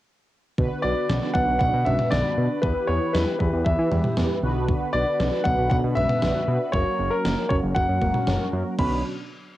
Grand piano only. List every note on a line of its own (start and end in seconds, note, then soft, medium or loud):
0.82 1.36 D5 loud
1.34 1.58 F#5 loud
1.59 1.86 F#5 loud
1.85 2.12 E5 medium
2.11 2.59 D5 medium
2.62 2.89 B4 medium
2.87 3.15 C#5 medium
3.13 3.37 B4 medium
3.39 3.63 B4 medium
3.65 4.13 E5 medium
4.93 5.41 D5 loud
5.44 5.68 F#5 loud
5.70 5.76 F#5 loud
5.95 6.75 E5 loud
6.72 7.12 C#5 loud
7.10 7.51 A#4 medium
7.49 7.55 C#5 medium
7.75 8.48 F#5 medium
8.79 9.03 B5 medium